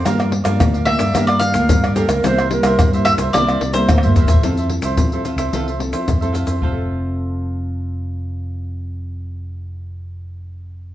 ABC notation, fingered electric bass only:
X:1
M:4/4
L:1/16
Q:1/4=110
K:F
V:1 name="Fingered electric bass" clef=bass
G,,3 G,, D,,3 G,, G,,3 D,, G,,3 _D,, | C,,3 C,, G,,3 C,, C,,2 C,,2 D,,2 E,,2 | F,,3 C,, F,2 z C,, C,,3 F, F,,3 F,, | F,,,16- |
F,,,16 |]